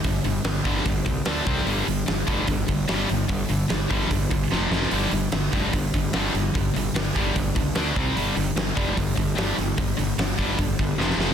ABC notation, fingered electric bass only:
X:1
M:4/4
L:1/8
Q:1/4=148
K:C
V:1 name="Fingered electric bass" clef=bass
G,,, G,,, G,,, G,,, G,,, C,, D,, C,, | G,,, G,,, G,,, F,,, G,,, G,,, G,,, G,,, | G,,, G,,, G,,, G,,, G,,, G,,, F,,, F,,, | G,,, G,,, G,,, F,,, G,,, G,,, G,,, G,,, |
G,,, G,,, G,,, G,,, G,,, ^C,, D,, =C,, | G,,, G,,, G,,, F,,, G,,, G,,, G,,, G,,, | G,,, G,,, G,,, G,,, G,,, G,,, F,,, F,,, |]